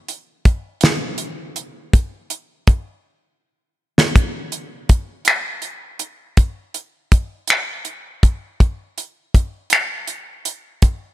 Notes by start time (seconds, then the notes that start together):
0.08 closed hi-hat
0.45 kick, closed hi-hat
0.81 snare, closed hi-hat
1.18 closed hi-hat
1.56 closed hi-hat
1.93 kick, closed hi-hat
2.30 closed hi-hat
2.67 kick, closed hi-hat
3.98 snare
4.16 kick, closed hi-hat
4.52 closed hi-hat
4.89 kick, closed hi-hat
5.25 finger snap, closed hi-hat
5.62 closed hi-hat
5.99 closed hi-hat
6.37 kick, closed hi-hat
6.74 closed hi-hat
7.12 kick, closed hi-hat
7.47 finger snap, closed hi-hat
7.85 closed hi-hat
8.23 kick, closed hi-hat
8.60 kick, closed hi-hat
8.98 closed hi-hat
9.34 kick, closed hi-hat
9.70 finger snap, closed hi-hat
10.07 closed hi-hat
10.45 closed hi-hat
10.82 kick, closed hi-hat